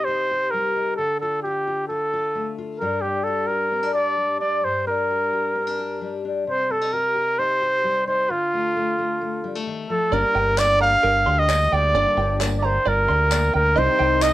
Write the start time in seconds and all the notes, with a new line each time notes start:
Already playing: C3 G3 G4 C5
0.04 D#4 C5
0.31 G4
0.51 G3 A#4
0.76 D#4
0.97 D3 A4
1.21 F4 A4
1.43 F4 G4
1.67 F4
1.88 F4 A4
2.13 F4
2.35 A3
2.58 F4
2.79 G2 G3 D4 A#4
2.83 G4
3.01 D4 G4
3.23 G4 A4
3.47 G4 A#4
3.72 C4
3.83 D4
3.94 G4 D5
4.17 G3
4.40 D4 D5
4.63 G2 C5
4.87 D4 A#4
5.11 G4
5.33 G4
5.55 C4
5.67 D4
5.79 G4
6.01 G3
6.25 D4
6.47 C3 C5
6.70 C4 A4
6.81 D#4
6.93 G4 A#4
7.16 G4
7.39 D#4 C5
7.62 G4
7.84 G3
8.07 D#4 C5
8.30 D3 F4
8.54 A3
8.76 A3
8.99 A3
9.21 A3
9.44 G3
9.55 A3
9.67 D#3
9.90 F3 A4
10.11 G1 G2 D3 G3 A#3 D4 G4 A#4 D5
10.35 G1 G3 A#3 D4 G5
10.57 G3 A#3 D4 G4 D5, clap, tambourine
10.80 G3 A#3 D4 G4 F5 A#5
11.03 G1 A#4
11.26 D2 G3 A#3 D4 G4 C6
11.39 D#5
11.49 G3 A#3 D4 G4 D5, clap, tambourine
11.72 D2 D5 G5
11.93 G1 G2 D3 G3 A#3 D4 G4 A#4 D5
12.17 G1 G3 A#3 D4 G4 G5
12.40 G3 A#3 D4 G4 D5, clap, tambourine
12.59 D5 A#5
12.63 G3 A#3 D4 G4 C5
12.85 G1 A#4 D5
13.08 D2 G3 A#3 D4 G4 C6
13.31 G3 A#3 D4 G4 D5, clap, tambourine
13.53 D2 A#4 G5
13.76 C2 C3 D#3 G3 C4 D#4 G4 C5 D#5
13.80 D#5
13.99 C2 C4 D#4 G5
14.21 G3 C4 G4 D#5, clap, tambourine